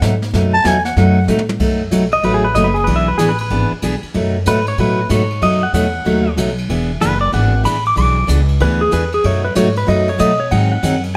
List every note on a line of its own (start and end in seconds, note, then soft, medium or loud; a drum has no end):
0.01 0.32 G#2 medium
0.01 0.13 B2 medium
0.01 0.13 F#3 medium
0.01 0.13 A3 medium
0.01 0.13 D#4 medium
0.01 0.14 F#4 medium
0.01 snare medium
0.01 hi-hat pedal medium
0.22 snare soft
0.33 0.64 F#2 medium
0.33 0.54 B2 medium
0.33 0.54 F#3 medium
0.33 0.55 A3 medium
0.33 0.55 D#4 medium
0.33 0.55 F#4 medium
0.33 brush sweep medium
0.33 snare medium
0.54 0.68 A5 loud
0.64 0.96 E2 medium
0.64 0.76 B2 medium
0.64 0.76 F#3 medium
0.64 0.76 A3 medium
0.64 0.76 D#4 medium
0.64 0.76 F#4 medium
0.64 0.84 G#5 loud
0.64 snare medium
0.64 hi-hat pedal medium
0.85 0.96 F#5 medium
0.85 snare soft
0.96 1.27 F#2 medium
0.96 1.17 B2 medium
0.96 1.18 F#3 medium
0.96 1.18 A3 medium
0.96 1.18 D#4 medium
0.96 1.18 F#4 medium
0.96 1.27 F#5 medium
0.96 brush sweep medium
0.96 snare soft
1.28 1.59 A2 medium
1.28 1.40 B2 medium
1.28 1.40 F#3 medium
1.28 1.40 A3 medium
1.28 1.40 D#4 medium
1.28 1.40 F#4 medium
1.28 hi-hat pedal medium
1.28 high tom medium
1.39 high tom medium
1.49 high tom medium
1.60 1.91 F#2 medium
1.60 1.81 B2 medium
1.60 1.81 F#3 medium
1.60 1.81 A3 medium
1.60 1.81 D#4 medium
1.60 1.81 F#4 medium
1.60 kick medium
1.60 crash medium
1.91 2.23 B1 medium
1.91 2.03 B2 medium
1.91 2.03 F#3 medium
1.91 2.03 A3 medium
1.91 2.04 D#4 medium
1.91 2.04 F#4 medium
1.91 hi-hat pedal medium
1.91 ride medium
2.12 2.23 D#5 medium
2.12 ride medium
2.23 2.54 A1 medium
2.23 2.44 B2 medium
2.23 2.45 F#3 medium
2.23 2.45 A3 medium
2.23 2.45 D#4 medium
2.23 2.45 F#4 medium
2.23 2.34 B4 medium
2.23 ride medium
2.34 2.44 G#4 medium
2.44 2.55 B4 medium
2.55 2.86 F#1 medium
2.55 2.67 B2 medium
2.55 2.67 F#3 medium
2.55 2.67 A3 medium
2.55 2.67 D#4 medium
2.55 2.67 F#4 medium
2.55 2.65 D#5 medium
2.55 hi-hat pedal medium
2.55 ride medium
2.64 2.75 B4 medium
2.74 2.86 G#4 medium
2.74 ride soft
2.84 3.18 B1 medium
2.84 3.08 E3 medium
2.84 3.08 B3 medium
2.84 3.08 D4 medium
2.84 2.96 B4 medium
2.84 ride medium
2.88 3.09 G#4 medium
2.96 3.07 E5 medium
3.08 3.19 B4 medium
3.18 3.49 A1 medium
3.18 3.30 E3 medium
3.18 3.31 B3 medium
3.18 3.31 D4 medium
3.18 3.29 G#4 medium
3.18 3.31 G#4 medium
3.18 hi-hat pedal medium
3.18 ride medium
3.29 3.39 B4 medium
3.38 3.72 B4 loud
3.38 ride medium
3.50 3.69 G#1 loud
3.50 3.72 E3 medium
3.50 3.72 B3 medium
3.50 3.72 D4 medium
3.50 3.72 G#4 medium
3.50 ride medium
3.71 muted upright bass stroke soft
3.82 4.01 B1 medium
3.82 3.94 E3 medium
3.82 3.94 B3 medium
3.82 3.94 D4 medium
3.82 3.95 G#4 medium
3.82 hi-hat pedal medium
3.82 ride medium
4.03 muted upright bass stroke soft
4.03 ride soft
4.14 4.45 F#2 loud
4.14 4.35 B2 medium
4.14 4.36 F#3 medium
4.14 4.36 A3 medium
4.14 4.36 D#4 medium
4.14 4.36 F#4 medium
4.14 ride medium
4.46 4.77 G#2 medium
4.46 4.58 B2 medium
4.46 4.58 F#3 medium
4.46 4.58 A3 medium
4.46 4.58 D#4 medium
4.46 4.58 F#4 medium
4.46 4.67 B4 loud
4.46 hi-hat pedal medium
4.46 ride medium
4.67 4.79 C#5 medium
4.67 ride medium
4.78 5.09 A2 medium
4.78 4.99 B2 medium
4.78 4.99 F#3 medium
4.78 4.99 A3 medium
4.78 5.00 D#4 medium
4.78 5.00 F#4 medium
4.78 5.10 B4 medium
4.78 ride medium
5.09 5.41 G#2 medium
5.09 5.21 B2 medium
5.09 5.21 F#3 medium
5.09 5.21 A3 medium
5.09 5.21 D#4 medium
5.09 5.22 F#4 medium
5.09 5.41 C#5 medium
5.09 hi-hat pedal medium
5.09 ride medium
5.30 ride soft
5.41 5.72 F#2 medium
5.41 5.63 B2 medium
5.41 5.63 F#3 medium
5.41 5.63 A3 medium
5.41 5.63 D#4 medium
5.41 5.63 F#4 medium
5.41 5.62 D#5 medium
5.41 ride medium
5.63 5.73 F#5 medium
5.73 6.04 E2 medium
5.73 5.85 B2 medium
5.73 5.85 F#3 medium
5.73 5.85 A3 medium
5.73 5.86 D#4 medium
5.73 5.86 F#4 medium
5.73 6.36 F#5 loud
5.73 hi-hat pedal medium
5.73 ride medium
6.05 6.36 D#2 medium
6.05 6.26 B2 medium
6.05 6.26 F#3 medium
6.05 6.27 A3 medium
6.05 6.27 D#4 medium
6.05 6.27 F#4 medium
6.05 ride medium
6.37 6.68 B1 medium
6.37 6.49 B2 medium
6.37 6.49 F#3 medium
6.37 6.49 A3 medium
6.37 6.49 D#4 medium
6.37 6.49 F#4 medium
6.37 hi-hat pedal medium
6.37 ride medium
6.58 ride soft
6.69 7.00 E1 medium
6.69 6.90 E3 medium
6.69 6.91 B3 medium
6.69 6.91 D4 medium
6.69 6.91 G#4 medium
6.69 ride medium
7.01 7.32 F#1 medium
7.01 7.12 E3 medium
7.01 7.13 B3 medium
7.01 7.13 D4 medium
7.01 7.13 G#4 medium
7.01 7.20 B4 medium
7.01 hi-hat pedal medium
7.01 ride medium
7.21 7.32 D5 medium
7.32 7.64 G#1 medium
7.32 7.54 E3 medium
7.32 7.54 B3 medium
7.32 7.54 D4 medium
7.32 7.54 G#4 medium
7.32 7.64 F#5 medium
7.32 ride medium
7.64 7.95 A1 medium
7.64 7.76 E3 medium
7.64 7.76 B3 medium
7.64 7.76 D4 medium
7.64 7.76 G#4 medium
7.64 7.84 B5 medium
7.64 hi-hat pedal medium
7.64 ride medium
7.86 7.97 D6 medium
7.86 ride soft
7.96 8.27 B1 medium
7.96 8.17 E3 medium
7.96 8.17 B3 medium
7.96 8.17 D4 medium
7.96 8.18 G#4 medium
7.96 8.28 D6 loud
7.96 ride medium
8.27 8.59 C#2 medium
8.27 8.39 E3 medium
8.27 8.40 B3 medium
8.27 8.40 D4 medium
8.27 8.40 G#4 medium
8.27 hi-hat pedal medium
8.27 ride medium
8.48 ride medium
8.60 8.91 D2 medium
8.60 8.81 E3 medium
8.60 8.81 B3 medium
8.60 8.82 D4 medium
8.60 8.82 G#4 medium
8.60 8.80 B4 loud
8.60 ride medium
8.81 8.92 G#4 loud
8.91 9.23 E2 medium
8.91 9.03 E3 medium
8.91 9.03 B3 medium
8.91 9.03 D4 medium
8.91 9.03 G#4 medium
8.91 9.12 B4 medium
8.91 hi-hat pedal medium
8.91 ride medium
9.12 9.24 G#4 medium
9.12 ride soft
9.24 9.55 F#2 medium
9.24 9.45 B2 medium
9.24 9.45 F#3 medium
9.24 9.45 A3 medium
9.24 9.45 D#4 medium
9.24 9.45 F#4 medium
9.24 9.44 C#5 medium
9.24 ride medium
9.45 9.56 B4 medium
9.55 9.86 G#2 medium
9.55 9.67 B2 medium
9.55 9.67 F#3 medium
9.55 9.67 A3 medium
9.55 9.67 D#4 medium
9.55 9.67 F#4 medium
9.55 9.76 C#5 medium
9.55 hi-hat pedal medium
9.55 ride medium
9.76 9.88 B4 loud
9.76 ride medium
9.87 10.18 F#2 medium
9.87 10.08 B2 medium
9.87 10.08 F#3 medium
9.87 10.08 A3 medium
9.87 10.08 D#4 medium
9.87 10.09 F#4 medium
9.87 10.07 D#5 loud
9.87 ride medium
10.08 10.20 C#5 loud
10.08 ride soft
10.18 10.30 B2 medium
10.18 10.50 B2 medium
10.18 10.30 F#3 medium
10.18 10.30 A3 medium
10.18 10.31 D#4 medium
10.18 10.31 F#4 medium
10.18 10.39 D#5 medium
10.18 hi-hat pedal medium
10.18 ride medium
10.40 10.51 C#5 medium
10.51 10.82 G#2 loud
10.51 10.72 D#3 medium
10.51 10.72 F#3 medium
10.51 10.72 C4 medium
10.51 10.72 D#4 medium
10.51 10.73 G#4 medium
10.51 10.70 F#5 medium
10.51 ride medium
10.72 11.02 F#5 medium
10.83 11.14 F#2 medium
10.83 10.94 D#3 medium
10.83 10.94 F#3 medium
10.83 10.95 C4 medium
10.83 10.95 D#4 medium
10.83 10.95 G#4 medium
10.83 hi-hat pedal medium
10.83 ride medium
11.03 ride medium